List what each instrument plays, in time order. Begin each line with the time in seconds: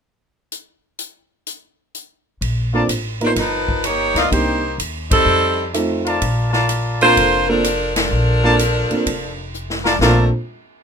0.52 closed hi-hat
0.99 closed hi-hat
1.47 closed hi-hat
1.95 closed hi-hat
2.41 upright bass A#1, kick, ride
2.72 grand piano A#3 C4 D4 F4 A4, trumpet section F4 A#4 D5 A5
2.88 upright bass A1, hi-hat pedal, ride
3.20 grand piano A#3 B3 D#4 F4 A#4, ride
3.25 saxophone section A3 D4 F4 C5
3.36 upright bass G1, saxophone section F3 D#4, kick, snare, ride
3.40 saxophone section A#4 B4
3.68 kick
3.84 saxophone section A#3 D#4 G4 C#5, cross-stick, hi-hat pedal, ride
4.14 upright bass C#2, saxophone section B3 F4 A#4 D#5, trumpet section D#4 C5 D5 F5, snare, ride
4.30 upright bass C2, grand piano A#3 C4 D4 D#4 G4, saxophone section A#3 D#4 G4 C5, kick, ride
4.78 upright bass D#2, hi-hat pedal, ride
5.11 saxophone section G3 C4 D#4 A4, kick, ride
5.26 upright bass F2
5.74 grand piano A3 C4 D#4 F4 A4, cross-stick, hi-hat pedal, ride
6.05 trumpet section F4 A#4 D5 A5, ride
6.22 upright bass A#1, kick, ride
6.53 trumpet section F4 A#4 D5 A5, snare
6.69 hi-hat pedal, ride
7.01 grand piano A#3 C4 D4 F4 A4, saxophone section A#3 F4 A4 C5, ride
7.17 upright bass F1, kick, ride
7.49 saxophone section F3 D4 A4 A#4, grand piano A#3 C4 D4 F4 A4
7.64 cross-stick, hi-hat pedal, ride
7.96 saxophone section F3 D4 A4 A#4, snare, ride
8.11 upright bass A#1
8.43 grand piano A#3 C4 D4 F4 A4, trumpet section F4 A#4 D5 A5
8.59 hi-hat pedal, ride
8.90 grand piano A#3 C4 D4 F4 A4, muted upright bass stroke, ride
9.06 upright bass F1, kick, ride
9.54 hi-hat pedal
9.70 snare
9.85 trumpet section F4 A#4 D5 A5, snare
9.99 upright bass A#1, saxophone section F3 A3 D4 A#4, grand piano A#3 C4 D4 F4 A4, trumpet section F4 A#4 D5 A5, snare